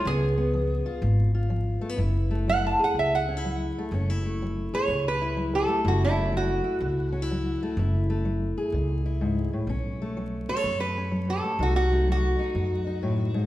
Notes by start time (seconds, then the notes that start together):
0.05 C#2 C#3 B3 G#4
0.38 B3
0.53 F3
0.86 F4
1.02 G#1 G#2
1.35 F4
1.50 F3
1.81 A3
1.89 B3
1.97 F#1 F#2 E4
2.31 A3
2.48 F#3 F#5
2.66 A5
2.79 G#4
2.84 F#5
2.94 C#2 C#3
2.99 E5
3.15 F#5
3.28 C#4
3.37 E4
3.45 F#3
3.78 A3
3.92 F#1 F#2 C#4
4.10 E4
4.26 A3
4.42 F#3
4.74 G#4 C#5
4.88 C#2 C#3
5.08 B4
5.22 E4
5.37 F#3
5.55 A4
5.68 A3
5.85 F#1 F#2 E4 F#4
6.04 E4
6.17 A3
6.32 F#3
6.37 F#4
6.64 E4
6.80 C#2 C#3
7.12 C#4
7.22 E4
7.31 F#3
7.63 A3
7.77 F#1 F#2 E4
8.10 A3
8.25 F#3
8.58 G#4
8.72 C#2 C#3
9.06 E4
9.21 G#2
9.53 A2
9.67 B1 B2 C#4
10.02 A3
10.17 F#3
10.49 F#4 C#5
10.56 A4
10.63 F#2
10.80 B4
10.97 C#4
11.12 F#3
11.30 A4
11.44 A3
11.59 C2 C3 D#4 F#4
11.76 F#4
11.92 A3
12.07 F#3
12.12 F#4
12.39 D#4
12.55 F#2
12.87 D#4
13.03 A2
13.34 G#2